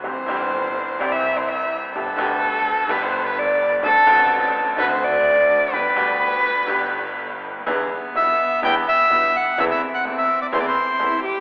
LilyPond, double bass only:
\new Staff \with { instrumentName = "Double bass" } { \clef bass \time 4/4 \key g \major \tempo 4 = 126 c,8 g,,4. c,2 | g,,8 d,4. g,,2 | d,8 a,,4. d,2 | g,,8 d,4. g,,2 |
\key e \minor e,8 r8 b,,8 r8 e,8 r8 b,,8 r8 | e,8 r8 e,8 r8 e,8 r8 e,8 r8 | }